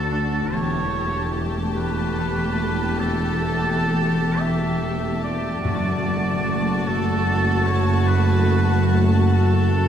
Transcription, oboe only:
0.00 0.54 A4 medium
0.53 1.49 C#5 medium
1.76 3.01 B4 medium
3.00 4.41 A4 medium
4.39 5.23 E5 medium
5.23 6.89 D5 medium
6.88 7.68 A4 medium
7.66 8.08 C#5 medium
8.07 9.04 B4 medium
9.34 9.88 A4 medium

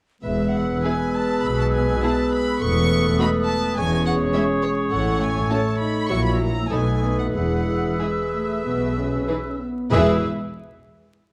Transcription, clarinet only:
0.25 2.63 G#4 soft
2.61 3.77 A4 medium
3.78 4.93 G#4 medium
4.92 6.12 A4 medium
6.10 6.50 F#4 soft
6.72 7.36 A4 soft
7.34 9.61 G#4 soft
9.91 10.18 G#4 medium

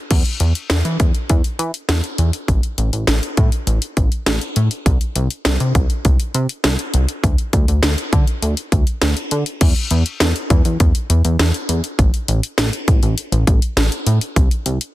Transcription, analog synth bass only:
0.11 0.23 E2 loud
0.40 0.53 E2 loud
0.70 0.83 E2 loud
0.85 0.97 E3 medium
1.00 1.12 E2 medium
1.30 1.42 E2 loud
1.59 1.72 E3 loud
1.89 2.01 E2 medium
2.19 2.31 E2 loud
2.48 2.61 A1 loud
2.78 2.90 A1 loud
2.93 3.05 A1 loud
3.08 3.20 A1 loud
3.38 3.50 A2 loud
3.67 3.79 A1 loud
3.97 4.09 A1 loud
4.27 4.39 A1 loud
4.56 4.69 A2 loud
4.86 4.98 C2 loud
5.16 5.28 C2 loud
5.46 5.58 C2 loud
5.60 5.73 C3 loud
5.75 5.88 C2 loud
6.05 6.17 C2 loud
6.35 6.47 C3 loud
6.64 6.77 C2 loud
6.94 7.06 C2 medium
7.24 7.36 D2 loud
7.53 7.66 D2 loud
7.68 7.81 D2 medium
7.83 7.96 D2 loud
8.13 8.25 D3 loud
8.42 8.55 D2 loud
8.72 8.85 D2 medium
9.02 9.14 D2 loud
9.32 9.44 D3 loud
9.61 9.74 E2 loud
9.91 10.03 E2 loud
10.21 10.33 E2 loud
10.50 10.63 E2 loud
10.65 10.78 E2 loud
10.80 10.93 E2 loud
11.10 11.22 E2 loud
11.25 11.37 E2 loud
11.39 11.52 E2 loud
11.69 11.81 E2 loud
11.99 12.11 A1 loud
12.28 12.41 A1 loud
12.58 12.71 A1 loud
12.88 13.00 A1 loud
13.03 13.15 A1 loud
13.32 13.45 A1 loud
13.47 13.60 A1 loud
13.77 13.89 A1 loud
14.07 14.19 A2 loud
14.36 14.49 C2 loud
14.66 14.78 C2 loud

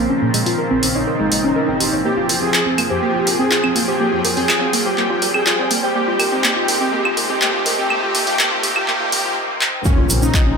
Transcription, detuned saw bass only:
0.22 0.31 A#2 medium
0.34 0.43 A#2 loud
0.46 0.55 A#2 medium
0.71 0.79 A#1 medium
0.83 0.92 A#1 medium
0.95 1.04 A#1 medium
1.20 1.28 G#1 medium
1.32 1.40 G#1 loud
1.44 1.53 G#1 medium
1.68 1.77 G#1 medium
1.80 1.89 G#1 loud
1.93 2.01 G#1 medium
2.17 2.26 F1 medium
2.29 2.38 F1 loud
2.42 2.50 F1 medium
2.66 2.75 F1 medium
2.78 2.87 F1 loud
2.91 2.99 F2 medium
3.15 3.23 F1 medium
3.27 3.36 F1 loud
3.39 3.48 F1 medium
3.64 3.72 F1 medium
3.76 3.84 F1 loud
3.88 3.97 F1 medium
4.12 4.21 F2 medium
4.24 4.33 F2 loud
4.37 4.45 F2 medium
4.61 4.70 F1 medium
4.73 4.82 F1 loud
4.86 4.94 F1 medium
5.10 5.18 D#1 medium
5.22 5.31 D#1 loud
5.34 5.43 D#1 medium
5.59 5.67 D#1 medium
5.71 5.80 D#1 loud
5.83 5.92 D#1 medium
6.08 6.16 C2 medium
6.19 6.28 C2 loud
6.32 6.40 C2 medium
6.56 6.65 C2 loud
6.68 6.77 C2 loud
6.81 6.89 G1 medium
7.05 7.14 C2 medium
7.17 7.26 C2 loud
7.30 7.38 C2 medium
7.54 7.62 C2 medium
7.66 7.75 C2 loud
7.78 7.87 C2 loud
8.03 8.11 G1 medium
8.15 8.23 G1 loud
8.27 8.36 G1 medium
8.51 8.60 C2 medium
8.64 8.72 C2 loud
8.76 8.84 C2 medium
9.00 9.09 C#2 medium
9.12 9.21 C#2 loud
9.25 9.33 C#2 medium
9.98 10.06 A#1 medium
10.10 10.19 A#1 loud
10.22 10.31 A#1 medium
10.47 10.55 A#1 medium

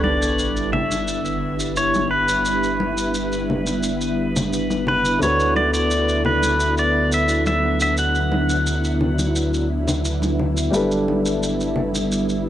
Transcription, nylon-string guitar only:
0.00 5.16 G3 medium
0.00 5.17 D4 medium
0.00 5.18 A4 medium
0.00 5.19 B4 medium
5.19 10.68 D3 medium
5.19 10.69 D4 medium
5.19 5.24 E4 medium
5.23 10.70 F#4 medium
5.23 10.71 B4 medium
10.71 12.49 G3 medium
10.71 12.49 D4 medium
10.71 10.76 E4 medium
10.75 12.49 A4 medium
10.75 12.49 B4 medium

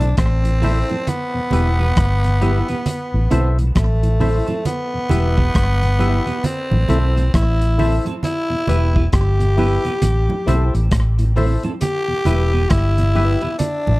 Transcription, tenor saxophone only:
0.00 0.17 D4 loud
0.18 1.10 C4 medium
1.09 3.53 B3 loud
3.77 4.62 A3 medium
4.66 6.47 B3 loud
6.46 7.34 C4 medium
7.34 7.96 E4 loud
8.24 9.09 E4 loud
9.14 10.88 G4 loud
11.82 12.71 G4 loud
12.70 13.58 E4 loud
13.58 14.00 D4 loud

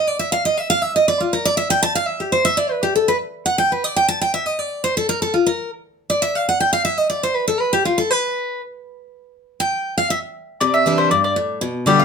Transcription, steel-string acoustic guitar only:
0.07 0.19 D5 medium
0.19 0.32 E5 medium
0.32 0.45 F5 loud
0.45 0.57 D#5 loud
0.57 0.69 E5 loud
0.70 0.82 F5 loud
0.82 0.95 E5 loud
0.96 1.08 D#5 medium
1.08 1.20 D5 medium
1.20 1.33 F4 medium
1.33 1.45 A#4 medium
1.45 1.57 D5 loud
1.57 1.70 E5 loud
1.70 1.82 G5 loud
1.83 1.95 A5 loud
1.95 2.07 F5 loud
2.07 2.20 E5 loud
2.20 2.32 G4 medium
2.32 2.45 C5 medium
2.45 2.57 E5 loud
2.57 2.71 D5 medium
2.71 2.83 B4 medium
2.83 2.95 G4 medium
2.96 3.08 A4 medium
3.08 3.16 B4 medium
3.46 3.58 F#5 medium
3.58 3.71 G5 loud
3.72 3.84 B4 medium
3.84 3.96 D5 medium
3.96 4.08 G5 loud
4.08 4.21 A5 loud
4.21 4.33 G5 loud
4.34 4.46 E5 loud
4.46 4.59 D#5 medium
4.59 4.84 D5 loud
4.84 4.96 C5 medium
4.97 5.09 A4 loud
5.09 5.21 A#4 loud
5.22 5.34 A4 medium
5.34 5.46 F4 medium
5.46 5.70 A#4 medium
6.10 6.22 D5 medium
6.22 6.35 E5 loud
6.35 6.47 F5 medium
6.49 6.60 F#5 medium
6.60 6.72 G5 loud
6.73 6.84 F5 loud
6.85 6.98 E5 loud
6.98 7.09 D#5 medium
7.10 7.22 D5 medium
7.23 7.35 C5 medium
7.35 7.47 B4 medium
7.48 7.60 A4 loud
7.60 7.72 B4 loud
7.73 7.85 G4 medium
7.85 7.98 F4 medium
7.98 8.11 A4 medium
8.11 8.61 B4 medium
9.60 9.96 G5 loud
9.98 10.10 F5 loud
10.10 10.18 E5 medium
10.61 11.09 C3 medium
10.86 11.10 E3 medium
10.86 11.10 G3 medium
10.86 11.11 D4 medium
10.86 11.11 E4 loud
11.11 11.35 G2 medium
11.36 11.60 A2 medium
11.61 12.05 B2 loud
11.86 12.05 D3 medium
11.86 12.05 G3 loud
11.86 12.05 B3 medium
11.86 12.05 G4 loud

